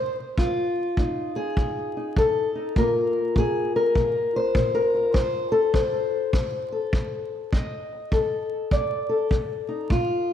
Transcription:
Already playing: C3 A#4 C5
0.38 F2 F4, kick
0.97 F2 D#4, kick
1.36 G#4
1.57 F2, kick
1.97 D#4
2.16 F2 A4, kick
2.55 D#4
2.76 A#2 A#3 F4 A#4, kick
3.36 A#2 G#4, kick
3.76 A#4
3.95 A#2 F4, kick
4.36 C5
4.55 A#2, kick
4.75 A#4
4.94 F4
5.14 F2 C5, kick
5.52 A4
5.73 F2 C5, kick
6.33 F2, kick
6.72 A4
6.93 F2, kick
7.52 F2 D#5, kick
8.11 F2 A4, kick
8.71 F2 D5, kick
9.09 A4
9.31 F2, kick
9.69 D#4
9.90 A#2 F4, kick

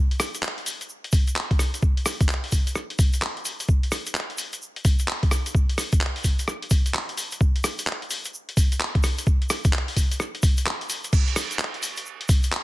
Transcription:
0.11 closed hi-hat
0.20 cross-stick, open hi-hat, shaker
0.35 closed hi-hat, shaker
0.43 clap, shaker
0.58 closed hi-hat
0.66 open hi-hat, shaker
0.81 closed hi-hat, shaker
0.89 shaker
1.04 closed hi-hat
1.12 kick, open hi-hat, shaker
1.28 closed hi-hat, shaker
1.36 clap, shaker
1.51 kick, closed hi-hat
1.59 cross-stick, open hi-hat, shaker
1.74 closed hi-hat, shaker
1.82 kick, shaker
1.97 closed hi-hat
2.06 cross-stick, open hi-hat, shaker
2.21 kick, closed hi-hat, shaker
2.29 clap, shaker
2.44 open hi-hat
2.52 kick, open hi-hat, shaker
2.67 closed hi-hat, shaker
2.75 cross-stick, shaker
2.90 closed hi-hat
2.99 kick, open hi-hat, shaker
3.13 closed hi-hat, shaker
3.22 cross-stick, clap, shaker
3.37 closed hi-hat
3.45 open hi-hat, shaker
3.60 closed hi-hat, shaker
3.68 kick, shaker
3.83 closed hi-hat
3.92 cross-stick, open hi-hat, shaker
4.06 closed hi-hat, shaker
4.15 clap, shaker
4.30 closed hi-hat
4.38 open hi-hat, shaker
4.53 closed hi-hat, shaker
4.62 shaker
4.76 closed hi-hat
4.85 kick, open hi-hat, shaker
4.99 closed hi-hat, shaker
5.08 clap, shaker
5.23 kick, closed hi-hat
5.31 cross-stick, open hi-hat, shaker
5.46 closed hi-hat, shaker
5.55 kick, shaker
5.69 closed hi-hat
5.78 cross-stick, open hi-hat, shaker
5.92 kick, closed hi-hat, shaker
6.01 clap, shaker
6.16 open hi-hat
6.24 kick, open hi-hat, shaker
6.39 closed hi-hat, shaker
6.48 cross-stick, shaker
6.62 closed hi-hat
6.70 kick, open hi-hat, shaker
6.86 closed hi-hat, shaker
6.94 cross-stick, clap, shaker
7.09 closed hi-hat
7.17 open hi-hat, shaker
7.31 closed hi-hat, shaker
7.41 kick, shaker
7.56 closed hi-hat
7.64 cross-stick, open hi-hat, shaker
7.79 closed hi-hat, shaker
7.87 clap, shaker
8.02 closed hi-hat
8.10 open hi-hat, shaker
8.25 closed hi-hat, shaker
8.34 shaker
8.49 closed hi-hat
8.57 kick, open hi-hat, shaker
8.72 closed hi-hat, shaker
8.80 clap, shaker
8.95 kick, closed hi-hat
9.03 cross-stick, open hi-hat, shaker
9.18 closed hi-hat, shaker
9.27 kick, shaker
9.42 closed hi-hat
9.50 cross-stick, open hi-hat, shaker
9.65 kick, closed hi-hat, shaker
9.73 clap, shaker
9.88 open hi-hat
9.97 kick, open hi-hat, shaker
10.11 closed hi-hat, shaker
10.20 cross-stick, shaker
10.35 closed hi-hat
10.43 kick, open hi-hat, shaker
10.57 closed hi-hat, shaker
10.66 cross-stick, clap, shaker
10.81 closed hi-hat
10.90 open hi-hat, shaker
11.04 closed hi-hat, shaker
11.13 kick, crash, shaker
11.28 closed hi-hat
11.36 cross-stick, open hi-hat, shaker
11.51 closed hi-hat, shaker
11.59 clap, shaker
11.74 closed hi-hat
11.83 open hi-hat, shaker
11.97 closed hi-hat, shaker
12.06 shaker
12.21 closed hi-hat
12.29 kick, open hi-hat, shaker
12.43 closed hi-hat, shaker
12.52 clap, shaker

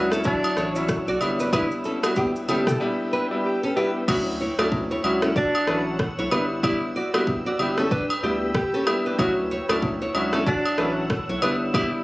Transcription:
Already playing: C#2 F#3 C#4 D4 E4 C#5 F#5 E6
0.12 C#4 E4 A4, cross-stick, shaker
0.24 F#3 D4 E4 C#5, kick, shaker
0.44 high agogo, shaker
0.57 A1 E4 C#5, cross-stick, shaker
0.75 F#3 C#4 D4 E4, shaker
0.88 kick, cross-stick, shaker
1.07 B1 F#4 D5, shaker
1.21 G1 G3 B3 D4 E4 B4 G5, high agogo, shaker
1.40 D4 B4, shaker
1.52 G3 B3 D4 E4 B4, kick, high agogo, shaker
1.71 shaker
1.84 C#4 A4, shaker
2.03 G3 B3 D4 E4 F#4, cross-stick, high agogo, shaker
2.16 B3 G4, kick, low woodblock, shaker
2.36 shaker
2.48 G1 G3 B3 C#4 D4 E4 G4 A4, high agogo, shaker
2.67 B3 G4 A4, cross-stick, mid tom, shaker
2.80 G3 B3 D4 E4
3.13 D4 B4
3.31 G3 B3 D4 E4
3.45 G4
3.63 C#4 A4
3.76 G3 B3 D4 E4 G4 B4
4.08 D2 F#3 C#4 D4 E4 F#4 C#5 F#5 E6, kick, crash, high agogo
4.41 E4 C#5
4.58 D2 F#3 C#4 D4 E4 F#4 A4 D5, cross-stick, high agogo
4.72 kick
4.91 E4 C#5
5.04 C#2 F#3 C#4 D4 E4 F#4, high agogo
5.22 C#4 E4 A4, cross-stick
5.36 D4 F#4 D5, kick
5.55 high agogo
5.67 A1 F#3 C#4 D4 E4 B4, cross-stick
5.99 kick, cross-stick
6.18 B1 E4 C#5
6.31 G1 G3 B3 D4 E4 B4 G5, high agogo
6.63 G3 B3 D4 E4 G4 D5, kick, high agogo
6.96 F#4 D5
7.14 G3 B3 D4 E4 F#4 G4 E5, cross-stick, high agogo
7.27 kick
7.46 F#4 D5
7.59 G1 G3 B3 D4 E4 G4, high agogo
7.78 C#4 A4, cross-stick
7.91 D4 B4, kick
8.10 high agogo
8.23 D2 G3 B3 D4 E4 G4
8.55 G4, kick, cross-stick
8.74 C#4 A4
8.86 G3 B3 D4 E4, cross-stick, high agogo
9.06 D4 B4
9.19 D2 F#3 C#4 D4 E4 F#4 C#5 F#5, kick, high agogo
9.51 E4 C#5
9.69 D2 F#3 C#4 D4 E4 F#4 A4 D5, cross-stick, high agogo
9.82 kick
10.02 E4 C#5
10.14 C#2 F#3 C#4 D4 E4 F#4, high agogo
10.33 C#4 E4 A4, cross-stick
10.47 D4 F#4 D5, kick
10.66 high agogo
10.78 A1 F#3 C#4 D4 E4 B4, cross-stick
11.10 kick, cross-stick
11.29 B1 E4 C#5
11.42 G1 G3 B3 D4 E4 B4 G5, high agogo
11.74 G3 B3 D4 E4 G4 D5, kick, high agogo

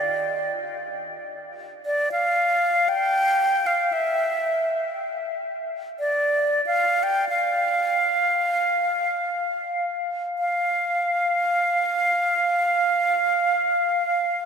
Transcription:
Already playing: D5
1.86 D5
2.12 F5
2.89 G5
3.66 F5
3.93 E5
5.99 D5
6.66 F5
7.03 G5
7.29 F5
10.39 F5

